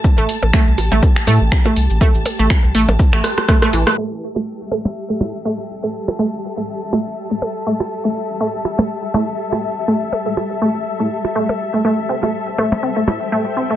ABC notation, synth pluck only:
X:1
M:4/4
L:1/16
Q:"Swing 16ths" 1/4=122
K:Am
V:1 name="Synth pluck"
z A, z2 A, z2 A, z2 A, z2 A, z2 | A, z2 A, z2 A, z2 A, z2 A, A, E, A, | A, z2 A, z2 A, z2 A, z2 A, z2 A, | z2 A, z2 A, z2 A, z2 A, z2 A, z |
z A, z2 A, z2 A, z2 A, z2 A, z2 | A, z2 A, z2 A, z2 A, z2 A, z2 A, | A, z C A, z2 A, z C A, z2 A, z C A, |]